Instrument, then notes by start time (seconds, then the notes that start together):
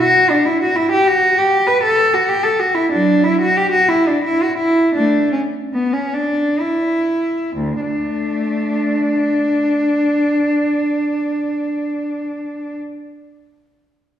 cello
0.00 F#4
0.30 D4
0.45 E4
0.62 F#4
0.76 E4
0.92 G4
1.07 F#4
1.38 G4
1.67 B4
1.83 A4
2.14 F#4
2.28 G4
2.43 A4
2.59 F#4
2.74 E4
2.92 F#3 D4
3.24 E4
3.41 F#4
3.56 G4
3.72 F#4
3.88 E4
4.07 D4
4.24 E4
4.43 F#4
4.58 E4
4.95 A3 D4
5.32 C#4
5.73 B3
5.93 C#4
6.13 D4
6.59 E4
7.56 D2
7.79 A3 D4